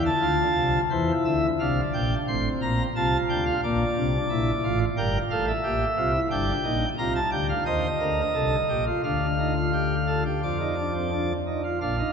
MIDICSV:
0, 0, Header, 1, 2, 480
1, 0, Start_track
1, 0, Tempo, 682594
1, 635, Time_signature, 4, 2, 24, 8
1, 2551, Tempo, 671141
1, 5431, Tempo, 691244
1, 8536, End_track
2, 0, Start_track
2, 0, Title_t, "Pipe organ"
2, 0, Program_c, 0, 19
2, 40, Note_on_c, 0, 81, 60
2, 153, Note_on_c, 0, 50, 66
2, 154, Note_on_c, 0, 38, 68
2, 154, Note_on_c, 0, 65, 81
2, 302, Note_off_c, 0, 50, 0
2, 303, Note_off_c, 0, 38, 0
2, 390, Note_on_c, 0, 36, 63
2, 391, Note_on_c, 0, 48, 59
2, 541, Note_off_c, 0, 36, 0
2, 542, Note_off_c, 0, 48, 0
2, 555, Note_off_c, 0, 81, 0
2, 568, Note_off_c, 0, 65, 0
2, 634, Note_on_c, 0, 64, 67
2, 635, Note_on_c, 0, 72, 75
2, 636, Note_on_c, 0, 40, 67
2, 637, Note_on_c, 0, 52, 66
2, 785, Note_off_c, 0, 40, 0
2, 785, Note_off_c, 0, 72, 0
2, 786, Note_off_c, 0, 52, 0
2, 877, Note_on_c, 0, 50, 59
2, 879, Note_on_c, 0, 38, 59
2, 880, Note_on_c, 0, 76, 67
2, 1026, Note_off_c, 0, 50, 0
2, 1027, Note_off_c, 0, 38, 0
2, 1028, Note_off_c, 0, 76, 0
2, 1050, Note_off_c, 0, 64, 0
2, 1122, Note_on_c, 0, 36, 62
2, 1122, Note_on_c, 0, 62, 58
2, 1123, Note_on_c, 0, 77, 69
2, 1124, Note_on_c, 0, 48, 62
2, 1270, Note_off_c, 0, 36, 0
2, 1271, Note_off_c, 0, 48, 0
2, 1271, Note_off_c, 0, 77, 0
2, 1358, Note_on_c, 0, 46, 65
2, 1359, Note_on_c, 0, 34, 64
2, 1359, Note_on_c, 0, 79, 74
2, 1507, Note_off_c, 0, 46, 0
2, 1508, Note_off_c, 0, 34, 0
2, 1508, Note_off_c, 0, 79, 0
2, 1533, Note_off_c, 0, 62, 0
2, 1602, Note_on_c, 0, 45, 61
2, 1602, Note_on_c, 0, 84, 72
2, 1603, Note_on_c, 0, 33, 65
2, 1604, Note_on_c, 0, 60, 63
2, 1749, Note_off_c, 0, 45, 0
2, 1749, Note_off_c, 0, 84, 0
2, 1750, Note_off_c, 0, 33, 0
2, 1841, Note_on_c, 0, 82, 72
2, 1842, Note_on_c, 0, 34, 63
2, 1842, Note_on_c, 0, 46, 64
2, 1988, Note_off_c, 0, 34, 0
2, 1988, Note_off_c, 0, 46, 0
2, 1988, Note_off_c, 0, 82, 0
2, 2012, Note_off_c, 0, 60, 0
2, 2079, Note_on_c, 0, 48, 63
2, 2080, Note_on_c, 0, 36, 65
2, 2080, Note_on_c, 0, 81, 77
2, 2081, Note_on_c, 0, 65, 69
2, 2226, Note_off_c, 0, 48, 0
2, 2227, Note_off_c, 0, 36, 0
2, 2227, Note_off_c, 0, 81, 0
2, 2315, Note_on_c, 0, 38, 62
2, 2315, Note_on_c, 0, 79, 70
2, 2318, Note_on_c, 0, 50, 61
2, 2417, Note_off_c, 0, 79, 0
2, 2433, Note_on_c, 0, 77, 72
2, 2462, Note_off_c, 0, 38, 0
2, 2464, Note_off_c, 0, 50, 0
2, 2488, Note_off_c, 0, 65, 0
2, 2535, Note_off_c, 0, 77, 0
2, 2554, Note_on_c, 0, 34, 74
2, 2554, Note_on_c, 0, 46, 74
2, 2554, Note_on_c, 0, 58, 79
2, 2555, Note_on_c, 0, 74, 74
2, 2702, Note_off_c, 0, 34, 0
2, 2702, Note_off_c, 0, 46, 0
2, 2702, Note_off_c, 0, 58, 0
2, 2796, Note_on_c, 0, 62, 74
2, 2797, Note_on_c, 0, 36, 69
2, 2798, Note_on_c, 0, 48, 68
2, 2943, Note_off_c, 0, 62, 0
2, 2944, Note_off_c, 0, 36, 0
2, 2944, Note_off_c, 0, 48, 0
2, 3029, Note_on_c, 0, 46, 68
2, 3030, Note_on_c, 0, 64, 76
2, 3032, Note_on_c, 0, 34, 71
2, 3179, Note_off_c, 0, 46, 0
2, 3179, Note_off_c, 0, 64, 0
2, 3181, Note_off_c, 0, 34, 0
2, 3273, Note_on_c, 0, 33, 72
2, 3275, Note_on_c, 0, 45, 76
2, 3275, Note_on_c, 0, 65, 81
2, 3379, Note_off_c, 0, 74, 0
2, 3422, Note_off_c, 0, 33, 0
2, 3423, Note_off_c, 0, 45, 0
2, 3423, Note_off_c, 0, 65, 0
2, 3511, Note_on_c, 0, 79, 76
2, 3512, Note_on_c, 0, 43, 70
2, 3513, Note_on_c, 0, 31, 67
2, 3513, Note_on_c, 0, 70, 85
2, 3660, Note_off_c, 0, 79, 0
2, 3661, Note_off_c, 0, 43, 0
2, 3662, Note_off_c, 0, 31, 0
2, 3662, Note_off_c, 0, 70, 0
2, 3751, Note_on_c, 0, 45, 67
2, 3751, Note_on_c, 0, 77, 69
2, 3752, Note_on_c, 0, 33, 70
2, 3752, Note_on_c, 0, 69, 82
2, 3855, Note_off_c, 0, 77, 0
2, 3871, Note_on_c, 0, 76, 62
2, 3900, Note_off_c, 0, 45, 0
2, 3901, Note_off_c, 0, 33, 0
2, 3901, Note_off_c, 0, 69, 0
2, 3986, Note_on_c, 0, 34, 73
2, 3987, Note_on_c, 0, 46, 71
2, 3988, Note_on_c, 0, 67, 85
2, 4136, Note_off_c, 0, 34, 0
2, 4137, Note_off_c, 0, 46, 0
2, 4138, Note_off_c, 0, 67, 0
2, 4224, Note_on_c, 0, 48, 65
2, 4226, Note_on_c, 0, 65, 74
2, 4228, Note_on_c, 0, 36, 68
2, 4331, Note_off_c, 0, 65, 0
2, 4344, Note_on_c, 0, 64, 80
2, 4375, Note_off_c, 0, 48, 0
2, 4378, Note_off_c, 0, 36, 0
2, 4387, Note_off_c, 0, 76, 0
2, 4450, Note_off_c, 0, 64, 0
2, 4466, Note_on_c, 0, 43, 69
2, 4467, Note_on_c, 0, 31, 72
2, 4467, Note_on_c, 0, 62, 86
2, 4467, Note_on_c, 0, 79, 75
2, 4617, Note_off_c, 0, 31, 0
2, 4617, Note_off_c, 0, 43, 0
2, 4617, Note_off_c, 0, 62, 0
2, 4704, Note_on_c, 0, 63, 80
2, 4706, Note_on_c, 0, 34, 68
2, 4706, Note_on_c, 0, 46, 66
2, 4855, Note_off_c, 0, 63, 0
2, 4856, Note_off_c, 0, 34, 0
2, 4857, Note_off_c, 0, 46, 0
2, 4882, Note_off_c, 0, 79, 0
2, 4949, Note_on_c, 0, 65, 76
2, 4950, Note_on_c, 0, 48, 66
2, 4951, Note_on_c, 0, 36, 70
2, 4951, Note_on_c, 0, 82, 73
2, 5054, Note_off_c, 0, 82, 0
2, 5073, Note_on_c, 0, 81, 63
2, 5099, Note_off_c, 0, 65, 0
2, 5100, Note_off_c, 0, 48, 0
2, 5101, Note_off_c, 0, 36, 0
2, 5176, Note_off_c, 0, 81, 0
2, 5188, Note_on_c, 0, 67, 78
2, 5188, Note_on_c, 0, 79, 72
2, 5189, Note_on_c, 0, 38, 67
2, 5189, Note_on_c, 0, 50, 68
2, 5294, Note_off_c, 0, 79, 0
2, 5312, Note_on_c, 0, 77, 65
2, 5340, Note_off_c, 0, 38, 0
2, 5340, Note_off_c, 0, 50, 0
2, 5340, Note_off_c, 0, 67, 0
2, 5417, Note_off_c, 0, 77, 0
2, 5433, Note_on_c, 0, 51, 69
2, 5434, Note_on_c, 0, 39, 68
2, 5435, Note_on_c, 0, 72, 80
2, 5435, Note_on_c, 0, 75, 69
2, 5580, Note_off_c, 0, 51, 0
2, 5581, Note_off_c, 0, 39, 0
2, 5581, Note_off_c, 0, 72, 0
2, 5671, Note_on_c, 0, 38, 64
2, 5671, Note_on_c, 0, 70, 72
2, 5672, Note_on_c, 0, 50, 64
2, 5819, Note_off_c, 0, 38, 0
2, 5819, Note_off_c, 0, 50, 0
2, 5819, Note_off_c, 0, 70, 0
2, 5906, Note_on_c, 0, 69, 74
2, 5907, Note_on_c, 0, 48, 64
2, 5908, Note_on_c, 0, 36, 64
2, 6056, Note_off_c, 0, 69, 0
2, 6057, Note_off_c, 0, 36, 0
2, 6057, Note_off_c, 0, 48, 0
2, 6150, Note_on_c, 0, 34, 56
2, 6150, Note_on_c, 0, 46, 55
2, 6151, Note_on_c, 0, 67, 63
2, 6254, Note_off_c, 0, 67, 0
2, 6258, Note_off_c, 0, 75, 0
2, 6271, Note_on_c, 0, 65, 61
2, 6299, Note_off_c, 0, 46, 0
2, 6300, Note_off_c, 0, 34, 0
2, 6375, Note_off_c, 0, 65, 0
2, 6392, Note_on_c, 0, 77, 61
2, 6393, Note_on_c, 0, 38, 59
2, 6393, Note_on_c, 0, 50, 65
2, 6393, Note_on_c, 0, 62, 64
2, 6542, Note_off_c, 0, 62, 0
2, 6633, Note_on_c, 0, 63, 59
2, 6736, Note_off_c, 0, 63, 0
2, 6753, Note_on_c, 0, 65, 57
2, 6857, Note_off_c, 0, 65, 0
2, 6872, Note_on_c, 0, 67, 55
2, 7022, Note_off_c, 0, 67, 0
2, 7108, Note_on_c, 0, 69, 61
2, 7215, Note_off_c, 0, 69, 0
2, 7223, Note_off_c, 0, 38, 0
2, 7223, Note_off_c, 0, 50, 0
2, 7223, Note_off_c, 0, 77, 0
2, 7237, Note_on_c, 0, 67, 55
2, 7341, Note_off_c, 0, 67, 0
2, 7356, Note_on_c, 0, 41, 58
2, 7356, Note_on_c, 0, 53, 59
2, 7356, Note_on_c, 0, 65, 60
2, 7356, Note_on_c, 0, 74, 56
2, 7461, Note_off_c, 0, 65, 0
2, 7476, Note_on_c, 0, 63, 53
2, 7581, Note_off_c, 0, 63, 0
2, 7597, Note_on_c, 0, 62, 58
2, 7701, Note_off_c, 0, 62, 0
2, 7719, Note_on_c, 0, 60, 50
2, 7822, Note_off_c, 0, 60, 0
2, 7835, Note_on_c, 0, 62, 59
2, 7977, Note_off_c, 0, 41, 0
2, 7977, Note_off_c, 0, 53, 0
2, 7977, Note_off_c, 0, 74, 0
2, 7985, Note_off_c, 0, 62, 0
2, 8076, Note_on_c, 0, 63, 52
2, 8180, Note_off_c, 0, 63, 0
2, 8198, Note_on_c, 0, 65, 53
2, 8300, Note_off_c, 0, 65, 0
2, 8316, Note_on_c, 0, 34, 79
2, 8317, Note_on_c, 0, 46, 81
2, 8317, Note_on_c, 0, 62, 65
2, 8318, Note_on_c, 0, 77, 71
2, 8419, Note_off_c, 0, 62, 0
2, 8438, Note_on_c, 0, 63, 62
2, 8464, Note_off_c, 0, 34, 0
2, 8465, Note_off_c, 0, 46, 0
2, 8536, Note_off_c, 0, 63, 0
2, 8536, Note_off_c, 0, 77, 0
2, 8536, End_track
0, 0, End_of_file